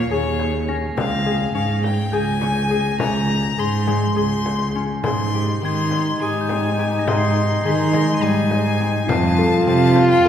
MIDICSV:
0, 0, Header, 1, 7, 480
1, 0, Start_track
1, 0, Tempo, 579151
1, 802, Time_signature, 7, 3, 24, 8
1, 8524, End_track
2, 0, Start_track
2, 0, Title_t, "Crotales"
2, 0, Program_c, 0, 9
2, 0, Note_on_c, 0, 92, 61
2, 0, Note_on_c, 0, 96, 55
2, 290, Note_off_c, 0, 92, 0
2, 569, Note_on_c, 0, 94, 73
2, 763, Note_off_c, 0, 96, 0
2, 1008, Note_off_c, 0, 94, 0
2, 1759, Note_on_c, 0, 91, 68
2, 1931, Note_on_c, 0, 94, 60
2, 3163, Note_off_c, 0, 91, 0
2, 3310, Note_off_c, 0, 94, 0
2, 4681, Note_on_c, 0, 92, 70
2, 5164, Note_on_c, 0, 87, 54
2, 5313, Note_on_c, 0, 91, 54
2, 5475, Note_off_c, 0, 92, 0
2, 5485, Note_on_c, 0, 92, 56
2, 5627, Note_off_c, 0, 91, 0
2, 5637, Note_on_c, 0, 91, 62
2, 5793, Note_on_c, 0, 94, 56
2, 5946, Note_on_c, 0, 96, 57
2, 6546, Note_off_c, 0, 87, 0
2, 6575, Note_off_c, 0, 94, 0
2, 6584, Note_on_c, 0, 94, 70
2, 6749, Note_on_c, 0, 99, 61
2, 6824, Note_off_c, 0, 92, 0
2, 7019, Note_off_c, 0, 91, 0
2, 7292, Note_off_c, 0, 96, 0
2, 7528, Note_on_c, 0, 96, 82
2, 7678, Note_off_c, 0, 99, 0
2, 7688, Note_on_c, 0, 99, 59
2, 7743, Note_off_c, 0, 94, 0
2, 8524, Note_off_c, 0, 96, 0
2, 8524, Note_off_c, 0, 99, 0
2, 8524, End_track
3, 0, Start_track
3, 0, Title_t, "Violin"
3, 0, Program_c, 1, 40
3, 0, Note_on_c, 1, 73, 98
3, 91, Note_off_c, 1, 73, 0
3, 96, Note_on_c, 1, 73, 98
3, 594, Note_off_c, 1, 73, 0
3, 806, Note_on_c, 1, 77, 104
3, 1248, Note_off_c, 1, 77, 0
3, 1285, Note_on_c, 1, 77, 97
3, 1505, Note_off_c, 1, 77, 0
3, 1531, Note_on_c, 1, 79, 96
3, 1773, Note_on_c, 1, 80, 115
3, 1785, Note_off_c, 1, 79, 0
3, 2483, Note_off_c, 1, 80, 0
3, 2488, Note_on_c, 1, 82, 111
3, 2973, Note_on_c, 1, 84, 110
3, 2986, Note_off_c, 1, 82, 0
3, 3452, Note_off_c, 1, 84, 0
3, 3457, Note_on_c, 1, 84, 109
3, 3968, Note_off_c, 1, 84, 0
3, 4181, Note_on_c, 1, 84, 100
3, 4630, Note_off_c, 1, 84, 0
3, 4670, Note_on_c, 1, 84, 107
3, 5115, Note_off_c, 1, 84, 0
3, 5156, Note_on_c, 1, 80, 105
3, 5862, Note_on_c, 1, 84, 106
3, 5875, Note_off_c, 1, 80, 0
3, 6338, Note_off_c, 1, 84, 0
3, 6343, Note_on_c, 1, 84, 116
3, 6817, Note_on_c, 1, 80, 112
3, 6829, Note_off_c, 1, 84, 0
3, 7537, Note_on_c, 1, 81, 111
3, 7549, Note_off_c, 1, 80, 0
3, 8010, Note_off_c, 1, 81, 0
3, 8015, Note_on_c, 1, 81, 115
3, 8348, Note_off_c, 1, 81, 0
3, 8377, Note_on_c, 1, 79, 95
3, 8499, Note_on_c, 1, 77, 98
3, 8511, Note_off_c, 1, 79, 0
3, 8524, Note_off_c, 1, 77, 0
3, 8524, End_track
4, 0, Start_track
4, 0, Title_t, "French horn"
4, 0, Program_c, 2, 60
4, 4180, Note_on_c, 2, 63, 97
4, 7501, Note_off_c, 2, 63, 0
4, 7518, Note_on_c, 2, 65, 127
4, 8524, Note_off_c, 2, 65, 0
4, 8524, End_track
5, 0, Start_track
5, 0, Title_t, "Harp"
5, 0, Program_c, 3, 46
5, 0, Note_on_c, 3, 58, 78
5, 0, Note_on_c, 3, 61, 100
5, 0, Note_on_c, 3, 68, 72
5, 0, Note_on_c, 3, 70, 89
5, 88, Note_off_c, 3, 68, 0
5, 91, Note_on_c, 3, 68, 93
5, 564, Note_off_c, 3, 61, 0
5, 568, Note_on_c, 3, 61, 83
5, 803, Note_on_c, 3, 60, 98
5, 853, Note_off_c, 3, 61, 0
5, 1041, Note_off_c, 3, 68, 0
5, 1045, Note_on_c, 3, 68, 82
5, 1282, Note_on_c, 3, 61, 95
5, 1331, Note_off_c, 3, 60, 0
5, 1374, Note_off_c, 3, 70, 0
5, 1761, Note_off_c, 3, 68, 0
5, 1764, Note_on_c, 3, 68, 92
5, 2003, Note_off_c, 3, 61, 0
5, 2007, Note_on_c, 3, 61, 76
5, 2239, Note_off_c, 3, 68, 0
5, 2243, Note_on_c, 3, 68, 83
5, 2483, Note_off_c, 3, 61, 0
5, 2486, Note_on_c, 3, 61, 96
5, 2518, Note_off_c, 3, 58, 0
5, 2966, Note_off_c, 3, 68, 0
5, 2970, Note_on_c, 3, 68, 82
5, 3211, Note_on_c, 3, 56, 83
5, 3446, Note_off_c, 3, 68, 0
5, 3449, Note_on_c, 3, 68, 89
5, 3937, Note_off_c, 3, 61, 0
5, 3941, Note_on_c, 3, 61, 78
5, 4174, Note_off_c, 3, 56, 0
5, 4184, Note_on_c, 3, 56, 93
5, 4428, Note_on_c, 3, 67, 74
5, 4478, Note_off_c, 3, 68, 0
5, 4665, Note_on_c, 3, 60, 88
5, 4714, Note_off_c, 3, 61, 0
5, 5144, Note_off_c, 3, 67, 0
5, 5148, Note_on_c, 3, 67, 91
5, 5383, Note_off_c, 3, 60, 0
5, 5386, Note_on_c, 3, 60, 81
5, 5622, Note_off_c, 3, 67, 0
5, 5625, Note_on_c, 3, 67, 79
5, 5858, Note_off_c, 3, 60, 0
5, 5861, Note_on_c, 3, 60, 96
5, 6342, Note_on_c, 3, 68, 91
5, 6392, Note_off_c, 3, 67, 0
5, 6566, Note_off_c, 3, 56, 0
5, 6576, Note_on_c, 3, 56, 89
5, 6814, Note_on_c, 3, 55, 100
5, 6864, Note_off_c, 3, 68, 0
5, 7293, Note_off_c, 3, 60, 0
5, 7296, Note_on_c, 3, 60, 84
5, 7529, Note_off_c, 3, 60, 0
5, 7532, Note_on_c, 3, 60, 101
5, 7576, Note_off_c, 3, 55, 0
5, 7576, Note_off_c, 3, 56, 0
5, 7776, Note_on_c, 3, 69, 92
5, 8011, Note_off_c, 3, 60, 0
5, 8014, Note_on_c, 3, 60, 97
5, 8490, Note_off_c, 3, 69, 0
5, 8493, Note_on_c, 3, 69, 100
5, 8524, Note_off_c, 3, 60, 0
5, 8524, Note_off_c, 3, 69, 0
5, 8524, End_track
6, 0, Start_track
6, 0, Title_t, "Cello"
6, 0, Program_c, 4, 42
6, 90, Note_on_c, 4, 39, 85
6, 769, Note_off_c, 4, 39, 0
6, 798, Note_on_c, 4, 37, 105
6, 1251, Note_off_c, 4, 37, 0
6, 1276, Note_on_c, 4, 44, 101
6, 1731, Note_off_c, 4, 44, 0
6, 1760, Note_on_c, 4, 37, 97
6, 2448, Note_off_c, 4, 37, 0
6, 2492, Note_on_c, 4, 37, 104
6, 2945, Note_off_c, 4, 37, 0
6, 2973, Note_on_c, 4, 44, 101
6, 3428, Note_off_c, 4, 44, 0
6, 3455, Note_on_c, 4, 37, 88
6, 4150, Note_off_c, 4, 37, 0
6, 4184, Note_on_c, 4, 44, 98
6, 4639, Note_off_c, 4, 44, 0
6, 4664, Note_on_c, 4, 51, 97
6, 5119, Note_off_c, 4, 51, 0
6, 5143, Note_on_c, 4, 44, 89
6, 5829, Note_off_c, 4, 44, 0
6, 5861, Note_on_c, 4, 44, 105
6, 6315, Note_off_c, 4, 44, 0
6, 6337, Note_on_c, 4, 51, 105
6, 6790, Note_off_c, 4, 51, 0
6, 6821, Note_on_c, 4, 44, 96
6, 7503, Note_off_c, 4, 44, 0
6, 7528, Note_on_c, 4, 41, 109
6, 7984, Note_off_c, 4, 41, 0
6, 8008, Note_on_c, 4, 48, 111
6, 8464, Note_off_c, 4, 48, 0
6, 8486, Note_on_c, 4, 41, 101
6, 8524, Note_off_c, 4, 41, 0
6, 8524, End_track
7, 0, Start_track
7, 0, Title_t, "Frame drum"
7, 327, Note_on_c, 9, 64, 52
7, 410, Note_off_c, 9, 64, 0
7, 566, Note_on_c, 9, 64, 23
7, 649, Note_off_c, 9, 64, 0
7, 808, Note_on_c, 9, 64, 73
7, 891, Note_off_c, 9, 64, 0
7, 1525, Note_on_c, 9, 64, 52
7, 1608, Note_off_c, 9, 64, 0
7, 2001, Note_on_c, 9, 64, 54
7, 2084, Note_off_c, 9, 64, 0
7, 2244, Note_on_c, 9, 64, 24
7, 2327, Note_off_c, 9, 64, 0
7, 2484, Note_on_c, 9, 64, 72
7, 2567, Note_off_c, 9, 64, 0
7, 2968, Note_on_c, 9, 64, 22
7, 3050, Note_off_c, 9, 64, 0
7, 3212, Note_on_c, 9, 64, 54
7, 3295, Note_off_c, 9, 64, 0
7, 3695, Note_on_c, 9, 64, 54
7, 3778, Note_off_c, 9, 64, 0
7, 4174, Note_on_c, 9, 64, 72
7, 4257, Note_off_c, 9, 64, 0
7, 4902, Note_on_c, 9, 64, 53
7, 4984, Note_off_c, 9, 64, 0
7, 5381, Note_on_c, 9, 64, 55
7, 5464, Note_off_c, 9, 64, 0
7, 5620, Note_on_c, 9, 64, 23
7, 5703, Note_off_c, 9, 64, 0
7, 5863, Note_on_c, 9, 64, 71
7, 5946, Note_off_c, 9, 64, 0
7, 6576, Note_on_c, 9, 64, 58
7, 6659, Note_off_c, 9, 64, 0
7, 7053, Note_on_c, 9, 64, 57
7, 7135, Note_off_c, 9, 64, 0
7, 7297, Note_on_c, 9, 64, 25
7, 7380, Note_off_c, 9, 64, 0
7, 7534, Note_on_c, 9, 64, 83
7, 7616, Note_off_c, 9, 64, 0
7, 8252, Note_on_c, 9, 64, 59
7, 8335, Note_off_c, 9, 64, 0
7, 8524, End_track
0, 0, End_of_file